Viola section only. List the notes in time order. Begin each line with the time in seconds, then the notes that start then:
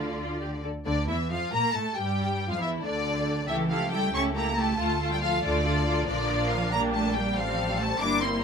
Already playing: F4 A4
0.19 F4
0.41 G4
0.64 A4
0.86 D3
1.09 E3
1.31 F3
1.52 A#3
1.74 A3
1.96 G3
2.49 F3
2.60 E3
2.81 D3
3.47 A3 E4
3.69 A3 E4
3.91 A3 E4
4.12 A3 E4
4.34 A3 E4
4.57 A3 E4
4.79 A3 F4
5.00 A3 F4
5.22 A3 F4
5.44 A3 F4
5.65 A3 F4
5.86 A3 F4
6.08 F3 D4
6.72 G3
7.36 C4
8.00 G3 A#3